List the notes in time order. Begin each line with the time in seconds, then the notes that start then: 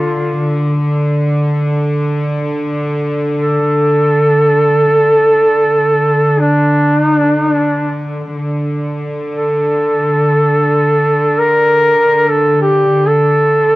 Already playing: D3 F4
3.40 A4
6.39 D4
7.02 D#4
7.15 D4
7.37 D#4
7.49 D4
8.36 D3
9.35 A4
11.39 A#4
12.29 A4
12.62 G4
13.07 A4